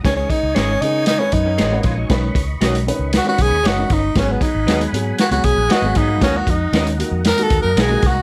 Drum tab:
HH |x-x-x-x-x-x-x-x-|x-x-xxx-x-x-x-x-|x-x-xxx-xxx-x-x-|x-x-xxx-xxx-x-x-|
SD |o---o---o---o-o-|o---o---o---o-o-|o---o---o---o-o-|o---o---o---o-o-|
BD |o-o-------o---o-|o-o-------o---o-|o-o-------o---o-|o-o-------o---o-|